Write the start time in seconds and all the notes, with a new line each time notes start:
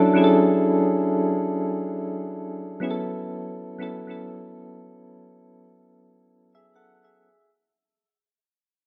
Already playing: F#3 C#4 D4 E4 A4
0.14 F#3 C#4 D4 E4
0.18 G#4
0.24 A4
2.80 F#3 B3 C#4 E4 G#4
2.91 A4
3.79 F#3 B3 C#4 E4 A4
4.07 F#3 B3 C#4 E4 A4
6.55 G#4 E5
6.76 A4 F#5
7.04 G#4 E5